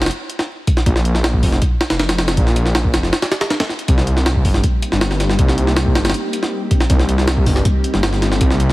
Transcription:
0.02 snare, closed hi-hat
0.06 snare, closed hi-hat
0.11 closed hi-hat
0.30 closed hi-hat
0.39 snare
0.67 kick, closed hi-hat
0.77 snare
0.86 A#1, kick, closed hi-hat
0.96 snare
1.05 closed hi-hat
1.15 snare
1.24 snare, closed hi-hat
1.34 kick
1.43 F1, kick, open hi-hat
1.52 snare
1.62 kick, closed hi-hat
1.81 snare, closed hi-hat
1.90 F1, snare, closed hi-hat
1.99 snare, closed hi-hat
2.09 snare, closed hi-hat
2.18 snare, closed hi-hat
2.28 snare, closed hi-hat
2.37 A#1, kick, closed hi-hat
2.47 snare
2.56 closed hi-hat
2.66 snare
2.75 snare, closed hi-hat
2.85 kick
2.94 F1, snare, closed hi-hat
3.03 snare
3.13 snare, closed hi-hat
3.22 snare, closed hi-hat
3.31 snare, closed hi-hat
3.41 snare, closed hi-hat
3.50 snare, closed hi-hat
3.60 snare, closed hi-hat
3.69 snare
3.79 closed hi-hat
3.88 C2, kick, closed hi-hat
3.98 snare
4.07 closed hi-hat
4.17 snare
4.26 snare, closed hi-hat
4.35 kick
4.45 G1 G3 A#3 C4 D#4 G4, kick, open hi-hat
4.54 snare
4.64 kick, closed hi-hat
4.82 closed hi-hat
4.92 G1, snare
5.01 snare, closed hi-hat
5.11 snare
5.20 snare, closed hi-hat
5.29 snare
5.39 C2, kick, closed hi-hat
5.48 snare
5.58 closed hi-hat
5.67 snare
5.76 snare, closed hi-hat
5.86 kick
5.95 G1 G3 A#3 C4 D#4 G4, snare, closed hi-hat
6.05 snare, closed hi-hat
6.10 snare, closed hi-hat
6.14 closed hi-hat
6.33 closed hi-hat
6.43 snare
6.71 kick, closed hi-hat
6.80 snare
6.90 C2, kick, closed hi-hat
6.99 snare
7.09 closed hi-hat
7.18 snare
7.28 snare, closed hi-hat
7.37 kick
7.46 G1 G3 A#3 C4 D#4 G4, kick, open hi-hat
7.56 snare
7.65 kick, closed hi-hat
7.84 closed hi-hat
7.94 G1, snare
8.03 snare, closed hi-hat
8.13 snare
8.22 snare, closed hi-hat
8.32 snare
8.41 C2, kick, closed hi-hat
8.50 snare
8.60 closed hi-hat
8.69 snare

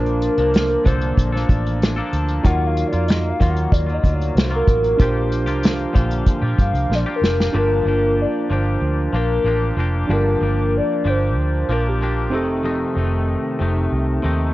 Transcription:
Already playing: A#1 F3 A#3 D4 F4 A#4 C5 A5
0.06 closed hi-hat
0.22 closed hi-hat
0.38 C2 F3 A#3 D4, closed hi-hat
0.54 snare, closed hi-hat
0.69 closed hi-hat
0.84 C2 A#2 D3 F3 A#3 D4 A4 C5, kick, closed hi-hat
1.01 closed hi-hat
1.17 A#1, kick, closed hi-hat
1.32 F3 A#3 D4 A4 C5, snare
1.49 A1 D5, kick, closed hi-hat
1.66 closed hi-hat
1.82 snare, closed hi-hat
1.96 F3 A#3 D4 A4
2.13 D2 A5, closed hi-hat
2.29 closed hi-hat
2.44 D#2 D#3 F#3 A#3 D#4 F4 F#4 F#5, kick, closed hi-hat
2.49 A#4
2.67 F5
2.77 closed hi-hat
2.88 D5
2.93 F2 A#3 F4, closed hi-hat
3.08 D#5, snare, closed hi-hat
3.29 F5
3.40 D#2 D#3 F#3 A#3 F4, kick, closed hi-hat
3.50 F#5
3.57 closed hi-hat
3.72 D#2 D5, kick, closed hi-hat
3.87 F#3 A#3 F4, closed hi-hat
3.94 D#5
4.04 D2, kick, closed hi-hat
4.14 D5
4.21 closed hi-hat
4.35 C2 C5, snare, closed hi-hat
4.50 F#3 A#3 F4
4.56 A#4
4.67 A1, kick, closed hi-hat
4.84 closed hi-hat
4.97 A#1 F3 A#3 D4 F4 G4, kick, closed hi-hat
5.01 G4 C5
5.32 closed hi-hat
5.46 C2 F3 A#3 F4 G4, closed hi-hat
5.63 snare, closed hi-hat
5.79 closed hi-hat
5.93 A#1 A#2 D3 F3 A#3 F4 G4, kick, closed hi-hat
6.11 closed hi-hat
6.26 kick, closed hi-hat
6.41 A#2 F3 A#3 F4 G4
6.58 G2 F5, kick, closed hi-hat
6.73 C2, closed hi-hat
6.90 A#1, snare
6.95 D5
7.06 F3 A#3 F4 G4
7.16 A#4
7.21 F1, snare
7.40 snare
7.53 G1 G2 D3 F3 A#3 D4 F4 G4 A5
7.57 A#4
7.85 G1 F3 A#3 D4 G4
8.21 D5
8.44 D5
8.50 G1 F3 A#3 D4 G4 C5
8.81 D2
9.13 A#1 F3 A#3 D4 G4 A#4
9.44 A1 F3 A#3 D4 G4
9.77 F1 F3 A#3 D4 G4
10.08 G1 G2 D3 F3 A#3 D4 F4 G4 A5
10.12 A#4
10.40 G1 F3 A#3 D4 G4
10.77 D5
11.05 G1 F3 A#3 D4 G4
11.10 C5
11.37 D2
11.69 A#1 F3 A#3 D4 G4 A#4
11.88 G4
12.01 F3 A#3 D4 G4
12.30 F1 C3 D#3 C4 D#4 G4
12.34 A3 D#4 A4
12.64 F2 C3 D#3 A3 D#4
12.95 F1 C3 D#3 A3 D#4
13.59 F1 C3 D#3 A3 D#4
13.92 C2
14.22 D#2 C3 D#3 A3 D#4

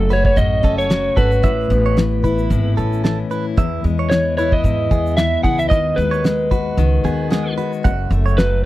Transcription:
Already playing: F#1 F#2 F#3 A3 F#4 A4
0.10 F#4 B4 C#5, shaker
0.25 C#5, kick
0.36 A1 F#2 D#5, kick, shaker
0.63 F#1 C#4 A4, kick, shaker
0.78 C#5, shaker
0.90 F#3, snare, shaker
1.17 G#1 F#4 A4 B4, kick, shaker
1.31 shaker
1.43 A1 A2 E5, kick, shaker
1.70 A1 B3, shaker
1.86 C#5
1.97 E3, snare, shaker
2.24 E4 B4, kick, shaker
2.38 shaker
2.50 G#1 A2, kick, shaker
2.77 A1 C#4 A4, shaker
2.93 shaker
3.04 E3 A4, snare, shaker
3.31 E4 B4, shaker
3.57 E2 E5, kick, shaker
3.84 E2 G#3, shaker
3.99 C#5
4.10 E3 C#5, snare, shaker
4.37 E4 B4 C#5, shaker
4.52 D#5, kick
4.64 E2 G#2, kick, shaker
4.91 E2 B3 G#4, kick, shaker
5.06 shaker
5.17 E3 E5, snare, shaker
5.43 C#2 E4 G#4 F#5, kick, shaker
5.59 E5, shaker
5.69 D#2 D#3 D#5, kick, shaker
5.96 D#2 G#3 B4, shaker
6.11 C#5, shaker
6.24 G#3, snare, shaker
6.51 F#4 B4, kick, shaker
6.77 C#2 D#3, shaker
7.04 D#2 B3 G#4, shaker
7.30 G#3 G#4, snare, shaker
7.57 F#4 B4, shaker
7.73 shaker
7.84 F#1 F#2 F#5, kick, shaker
8.11 F#1 A3, shaker
8.26 C#5, shaker
8.38 F#3 B4, snare, shaker

